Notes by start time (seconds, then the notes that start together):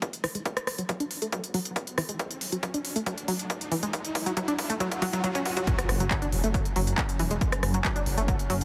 Already playing: riser
0.02 kick, closed hi-hat
0.13 closed hi-hat
0.24 E3, cross-stick, open hi-hat
0.35 G#3, closed hi-hat
0.46 kick, closed hi-hat
0.57 cross-stick, closed hi-hat
0.67 cross-stick, open hi-hat
0.78 F#3, closed hi-hat
0.89 F#3, kick, closed hi-hat
1.00 D4, closed hi-hat
1.11 open hi-hat
1.22 A3, closed hi-hat
1.32 F#3, kick, closed hi-hat
1.44 closed hi-hat
1.54 F#3, open hi-hat
1.65 closed hi-hat
1.76 kick, closed hi-hat
1.87 closed hi-hat
1.98 E3, cross-stick, open hi-hat
2.09 G#3, closed hi-hat
2.19 kick, closed hi-hat
2.31 closed hi-hat
2.41 open hi-hat
2.52 F#3, closed hi-hat
2.63 F#3, kick, closed hi-hat
2.74 D4, closed hi-hat
2.85 open hi-hat
2.96 A3, closed hi-hat
3.06 F#3, kick, closed hi-hat
3.18 closed hi-hat
3.28 F#3, open hi-hat
3.39 closed hi-hat
3.50 kick, closed hi-hat
3.61 closed hi-hat
3.72 E3, open hi-hat
3.83 G#3, closed hi-hat
3.93 kick, closed hi-hat
4.05 closed hi-hat
4.15 kick, open hi-hat
4.26 F#3, closed hi-hat
4.37 F#3, kick, closed hi-hat
4.48 D4, closed hi-hat
4.59 kick, open hi-hat
4.70 A3, closed hi-hat
4.80 F#3, kick, closed hi-hat, swell
4.91 kick, closed hi-hat
5.02 F#3, kick, open hi-hat
5.13 F#3, kick, closed hi-hat
5.24 F#3, kick, closed hi-hat
5.35 C#4, kick, closed hi-hat
5.45 kick, open hi-hat
5.57 F#3, kick, closed hi-hat
5.67 F#3 C#4, kick, closed hi-hat, impact
5.78 cross-stick, closed hi-hat
5.89 F#1, cross-stick, open hi-hat
6.00 F#3, closed hi-hat
6.11 F#3, kick, clap, closed hi-hat
6.22 D4, closed hi-hat
6.32 E1, open hi-hat
6.44 F#1 A3, closed hi-hat
6.54 F#3, kick, closed hi-hat
6.65 closed hi-hat
6.76 F#1 F#3, open hi-hat
6.87 closed hi-hat
6.98 kick, clap, closed hi-hat
7.09 closed hi-hat
7.19 E1 E3, open hi-hat
7.31 G#3, closed hi-hat
7.41 kick, closed hi-hat
7.52 cross-stick, closed hi-hat
7.63 F#1, cross-stick, open hi-hat
7.74 F#3, closed hi-hat
7.85 F#3, kick, clap, closed hi-hat
7.96 D4, closed hi-hat
8.06 F#1, open hi-hat
8.18 F#1 A3, closed hi-hat
8.28 F#3, kick, closed hi-hat
8.39 closed hi-hat
8.50 F#1 F#3, open hi-hat